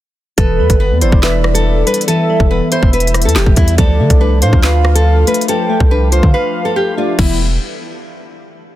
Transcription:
0.38 E1 E3 A4 B4, kick, closed hi-hat
0.59 E2 G3
0.70 G1, kick, closed hi-hat
0.80 B3 B4
0.91 E2
1.01 G1 E4 C5 D5, closed hi-hat
1.12 E1, kick
1.23 B4 E5, snare, clap
1.44 cross-stick
1.54 A4, closed hi-hat
1.87 G3 B4, closed hi-hat
1.94 closed hi-hat
2.01 closed hi-hat
2.08 E3 A4 E5, closed hi-hat
2.30 G3
2.40 E1, kick
2.51 B3 B4
2.72 E4 C5 E5, closed hi-hat
2.83 E1, kick
2.93 B4 E5, closed hi-hat
3.00 closed hi-hat
3.07 closed hi-hat
3.14 cross-stick, closed hi-hat
3.22 E2 A4, closed hi-hat
3.29 closed hi-hat
3.36 E1 G4, snare, clap
3.46 E1, kick
3.56 E2 G3 E4, kick, closed hi-hat
3.68 closed hi-hat
3.78 D2 F3 A4 D5, kick, closed hi-hat
4.00 D3 A3
4.10 C2, kick, closed hi-hat
4.21 D4 B4
4.42 A2 F4 C5 F5, closed hi-hat
4.53 D2, kick
4.63 B4 F5, snare, clap
4.85 cross-stick
4.95 A4, closed hi-hat
5.27 A3 B4, closed hi-hat
5.34 closed hi-hat
5.41 closed hi-hat
5.48 F3 A4 G5, closed hi-hat
5.69 A3
5.80 C2, kick
5.91 D4 B4
6.12 F4 C5 F5, closed hi-hat
6.23 D3, kick
6.34 B4 F5
6.65 A4
6.76 G4
6.97 A3 F4 D5
7.19 E1 E3 G3 B3 E4 E5, kick, crash

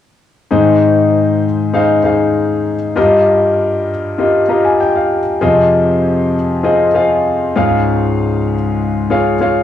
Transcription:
0.51 G#2 D#3 D#4 G#4 C5 D#5
1.73 D#4 G#4 C5 F5
2.04 D#4 G#4 C5 F5
2.96 G2 G3 F4 G4 A#4 D#5
4.18 F4 G4 A#4 D#5
4.49 F4 G4 A#4 D#5 A#5
4.65 G#5
4.80 G5
4.95 F5
5.41 F2 C3 F4 G#4 C5 D#5
6.63 F4 G#4 C5 D#5
6.94 F4 G#4 C5 F5
7.56 C#2 G#2 F4 G#4 C#5 F5
9.10 F4 G#4 C#5 F5
9.40 F4 G#4 C#5 F5

